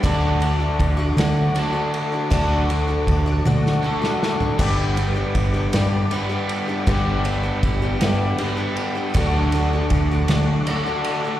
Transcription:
Already playing: tonewheel organ D5
0.01 fingered electric bass D2, twelve-string acoustic guitar D3 F#3 A3 D4, upright piano F#4 A4 D5, tonewheel organ A4 F#5 D6, kick, ride
0.05 twelve-string acoustic guitar F#4, overdriven electric guitar A4
0.40 twelve-string acoustic guitar F#3 A3 D4 F#4, ride
0.60 twelve-string acoustic guitar A3 D4 F#4
0.79 fingered electric bass D2, kick, ride
0.97 twelve-string acoustic guitar A3 D4 F#4
1.17 fingered electric bass D3, twelve-string acoustic guitar D3 F#3 A3 D4 F#4, upright piano F#4 A4 D5, snare, ride
1.55 overdriven electric guitar D3, twelve-string acoustic guitar F#3 A3 D4 F#4, ride
1.59 overdriven electric guitar A4
1.73 twelve-string acoustic guitar A3 D4 F#4
1.94 ride
2.12 twelve-string acoustic guitar A3 D4 F#4
2.30 fingered electric bass D2, twelve-string acoustic guitar D3 F#3 A3 D4 F#4, upright piano F#4 A4 D5, overdriven electric guitar A4, kick, ride
2.69 twelve-string acoustic guitar F#3 A3 D4 F#4, ride
2.88 twelve-string acoustic guitar A3 D4 F#4
3.07 fingered electric bass D2, kick, ride
3.26 twelve-string acoustic guitar A3 D4 F#4
3.45 fingered electric bass D3, twelve-string acoustic guitar D3 F#3 A3 D4 F#4, upright piano F#4 A4 D5, high tom
3.66 snare
3.82 overdriven electric guitar D3 A4, twelve-string acoustic guitar F#3 A3 D4 F#4
4.02 twelve-string acoustic guitar A3 D4 F#4, snare
4.23 snare
4.40 twelve-string acoustic guitar A3 D4 F#4, floor tom
4.59 fingered electric bass G1, twelve-string acoustic guitar G2 D3 G3 B3 D4 G4, upright piano G4 B4 D5, tonewheel organ B4 D5 G5, overdriven electric guitar B4, kick, crash
4.96 twelve-string acoustic guitar G3 B3 D4 G4, ride
5.14 twelve-string acoustic guitar G3 B3 D4 G4
5.35 fingered electric bass G1, kick, ride
5.54 twelve-string acoustic guitar G3 B3 D4 G4
5.73 twelve-string acoustic guitar G2 D3 G3 B3 D4 G4, fingered electric bass G2, upright piano G4 B4 D5, snare, ride
6.11 twelve-string acoustic guitar G3 B3 D4 G4, overdriven electric guitar B4, ride
6.29 twelve-string acoustic guitar G3 B3 D4 G4
6.49 ride
6.68 twelve-string acoustic guitar G3 B3 D4 G4
6.86 fingered electric bass G1, twelve-string acoustic guitar G2 D3 G3 B3 D4 G4, upright piano G4 B4 D5, tonewheel organ E6, kick, ride
6.90 overdriven electric guitar B4
7.24 twelve-string acoustic guitar G3 B3 D4 G4, ride
7.43 twelve-string acoustic guitar G3 B3 D4 G4
7.63 fingered electric bass G1, kick, ride
7.82 twelve-string acoustic guitar G3 B3 D4 G4
8.01 twelve-string acoustic guitar G2 D3 G3 B3 D4 G4, fingered electric bass G2, upright piano G4 B4 E5, snare, ride
8.38 twelve-string acoustic guitar G3 B3 D4 G4, ride
8.42 overdriven electric guitar B4
8.57 twelve-string acoustic guitar G3 B3 D4 G4
8.76 ride
8.95 twelve-string acoustic guitar G3 B3 D4 G4
9.14 fingered electric bass D2, twelve-string acoustic guitar D3 F#3 A3 D4 F#4, upright piano F#4 A4 D5, tonewheel organ A4 F#5 D6, kick, ride
9.18 overdriven electric guitar A4
9.52 twelve-string acoustic guitar F#3 A3 D4 F#4, ride
9.73 twelve-string acoustic guitar A3 D4 F#4
9.90 fingered electric bass D2, kick, ride
10.11 twelve-string acoustic guitar A3 D4 F#4
10.28 fingered electric bass D3, twelve-string acoustic guitar D3 F#3 A3 D4 F#4, upright piano F#4 A4 D5, snare, ride
10.65 overdriven electric guitar D3 A4, twelve-string acoustic guitar F#3 A3, ride
10.70 twelve-string acoustic guitar D4 F#4
10.86 twelve-string acoustic guitar A3 D4 F#4
11.04 ride
11.24 twelve-string acoustic guitar A3 D4 F#4

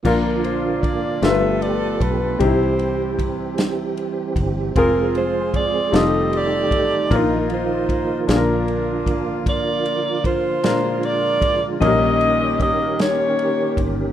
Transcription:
0.03 fingered electric bass A#1, grand piano A#2 D4 F4 A#4, tonewheel organ D3 F3 A#3 F4, saxophone section F4 A#4, kick, crash
0.07 saxophone section D4
0.44 saxophone section C5, ride
0.82 saxophone section D5, kick, ride
1.22 fingered electric bass G1, grand piano G2 A3 D4 F4 G4 A#4, tonewheel organ A3 B3 G4, saxophone section A4 B4 E5, snare, ride
1.30 grand piano B4
1.62 saxophone section D5, ride
2.01 fingered electric bass B1, saxophone section B4, kick, ride
2.39 fingered electric bass C2, grand piano C3 C4 D#4 G4, tonewheel organ E3 G3 C4, saxophone section E4 G4 C5, kick, ride
2.47 grand piano E4
2.79 ride
3.19 kick, ride
3.58 snare, ride
3.97 ride
4.36 fingered electric bass G1, kick, ride
4.75 fingered electric bass F1, tonewheel organ F3 G#3 G#4, grand piano C4 F4 G#4, saxophone section F4 A#4, kick, ride
5.15 saxophone section C5, ride
5.54 saxophone section D5, kick, ride
5.92 fingered electric bass F1, tonewheel organ D#3 A3 D#4 G4, grand piano G3 C4 D#4 F4 A4, saxophone section G4 A4, snare, ride
5.96 saxophone section D#5
6.33 saxophone section G4 A4 D5, ride
6.71 fingered electric bass A1, kick, ride
7.10 fingered electric bass A#1, grand piano A#2 D4 F4 A#4, tonewheel organ F3 A#3 F4, kick, ride
7.14 saxophone section D#4 F4 A#4, grand piano D#4
7.50 saxophone section D#4 F4 C5, ride
7.89 kick, ride
8.27 fingered electric bass A#1, grand piano A#2 D4 F4 G#4, tonewheel organ D3 F4, saxophone section D4, snare, ride
8.31 saxophone section F4 A#4
8.36 grand piano A#4
8.68 ride
9.06 fingered electric bass G#1, kick, ride
9.46 fingered electric bass A#1, saxophone section F4 A#4 D5, kick, ride
9.86 ride
10.24 saxophone section F4 C5, kick, ride
10.63 grand piano A#2 D4 F4 A#4, tonewheel organ G#3, snare, ride
11.03 saxophone section F4 A#4 D5, ride
11.42 kick, ride
11.80 fingered electric bass A#1, grand piano A#2 F3 A#3 C#4 D#4 A#4, tonewheel organ D#3 A#3 C#4 G4, saxophone section G4 D#5, kick, ride
11.87 grand piano G3
12.21 ride
12.60 saxophone section D#5, kick, ride
12.99 saxophone section G4 C#5, snare, ride
13.39 ride
13.77 fingered electric bass G1, kick, ride

